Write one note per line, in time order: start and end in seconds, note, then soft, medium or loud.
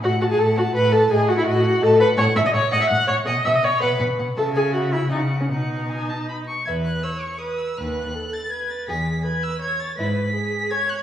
0.02 0.35 A2 medium
0.02 0.11 F#4 loud
0.02 0.20 F#5 loud
0.02 0.23 F#5 medium
0.21 0.25 F#4 loud
0.21 0.24 F#5 medium
0.21 0.40 A5 medium
0.30 0.38 G#4 loud
0.30 0.40 G#5 medium
0.38 0.71 A2 medium
0.38 0.46 A4 loud
0.38 0.58 F#5 medium
0.38 0.58 A5 loud
0.56 0.65 F#4 loud
0.56 0.74 F#5 loud
0.56 0.74 A5 medium
0.75 1.07 A2 loud
0.75 0.94 B4 loud
0.75 0.95 F#5 medium
0.75 0.93 B5 loud
0.92 1.12 A4 loud
0.92 1.11 A5 medium
1.10 1.42 A2 medium
1.10 1.30 G#4 loud
1.10 1.31 D#5 medium
1.10 1.28 G#5 loud
1.28 1.37 F#4 loud
1.28 1.37 F#5 medium
1.28 1.47 F#5 medium
1.37 1.46 E4 loud
1.37 1.42 E5 loud
1.46 1.78 A2 medium
1.46 1.85 F#4 loud
1.46 1.66 D#5 medium
1.46 1.82 F#5 loud
1.65 1.82 F#5 medium
1.82 2.14 A2 loud
1.82 2.00 A4 loud
1.82 2.01 D#5 medium
1.82 1.99 A5 loud
1.99 2.08 B4 loud
1.99 2.17 F#5 medium
1.99 2.07 B5 loud
2.17 2.25 A2 loud
2.17 2.25 C#5 loud
2.17 2.35 F#5 loud
2.17 2.25 C#6 loud
2.36 2.43 A2 medium
2.36 2.40 E5 loud
2.36 2.43 F#5 medium
2.36 2.40 E6 loud
2.46 2.50 D#5 loud
2.46 2.49 D#6 medium
2.54 2.61 A2 medium
2.54 2.72 C#5 loud
2.54 2.61 F#5 medium
2.54 2.62 C#6 loud
2.71 2.79 A2 loud
2.71 2.76 D#5 loud
2.71 2.89 F#5 loud
2.71 2.81 D#6 loud
2.81 2.90 E5 loud
2.81 2.85 E6 loud
2.90 2.98 A2 medium
2.90 2.97 F#5 medium
2.90 3.07 F#5 loud
2.90 3.08 F#6 loud
3.08 3.16 A2 medium
3.08 3.15 C#5 loud
3.08 3.16 F#5 medium
3.08 3.16 C#6 loud
3.27 3.34 B2 loud
3.27 3.47 D#5 loud
3.27 3.44 F#5 medium
3.27 3.34 D#6 loud
3.45 3.53 B2 medium
3.45 3.57 E5 loud
3.45 3.53 F#5 medium
3.45 3.53 E6 medium
3.54 3.66 D#5 loud
3.54 3.65 D#6 medium
3.63 3.71 B2 medium
3.63 3.83 C#5 loud
3.63 3.70 F#5 medium
3.63 3.82 C#6 loud
3.80 3.89 B2 loud
3.80 4.01 B4 loud
3.80 3.98 F#5 medium
3.80 4.00 B5 loud
4.00 4.07 B2 medium
4.00 4.07 F#5 medium
4.18 4.26 B2 medium
4.18 4.26 F#5 medium
4.36 5.07 C#3 medium
4.36 4.45 A4 loud
4.36 5.07 E5 medium
4.36 4.54 A5 medium
4.54 4.63 G#4 loud
4.54 4.73 G#5 medium
4.74 4.94 F#4 loud
4.74 4.81 F#5 medium
4.91 5.10 E4 medium
4.91 5.09 E5 loud
5.09 5.50 C#3 medium
5.09 5.19 D#4 loud
5.09 5.17 D#5 medium
5.09 5.49 F#5 medium
5.40 5.45 C#4 medium
5.40 5.44 C#5 medium
5.49 6.47 B2 medium
5.49 6.45 D#4 medium
5.49 6.45 D#5 medium
5.49 5.85 F#5 medium
5.90 6.11 G#5 medium
6.09 6.28 A5 medium
6.28 6.36 B5 medium
6.48 6.66 C#6 medium
6.66 6.98 E2 medium
6.66 7.06 B4 medium
6.66 6.84 E5 medium
6.66 6.73 G#6 medium
6.85 7.05 F#6 medium
7.03 7.40 C#5 medium
7.03 7.23 E6 medium
7.21 7.40 C#6 medium
7.39 7.77 B4 medium
7.39 7.59 D#6 medium
7.58 7.79 E6 medium
7.77 8.09 D#2 medium
7.77 7.95 B4 medium
7.77 8.17 B4 medium
7.77 8.35 F#6 medium
8.15 8.50 A4 medium
8.33 8.52 A6 medium
8.51 8.89 B4 medium
8.51 8.72 G#6 medium
8.70 8.88 A6 medium
8.88 9.19 E2 medium
8.88 9.26 G#4 medium
8.88 9.06 G#4 medium
8.88 9.24 B6 medium
9.24 9.60 B4 medium
9.24 9.45 G#6 loud
9.43 9.61 E6 loud
9.61 9.97 C#5 medium
9.61 9.81 G#6 loud
9.80 9.97 A6 loud
9.98 10.28 G#2 medium
9.98 10.15 E4 medium
9.98 10.34 B4 medium
9.98 10.72 B6 loud
10.35 10.72 G#4 medium
10.71 11.03 C#5 medium
10.71 10.91 G#6 loud
10.89 10.96 F#6 loud
10.97 11.00 G#6 medium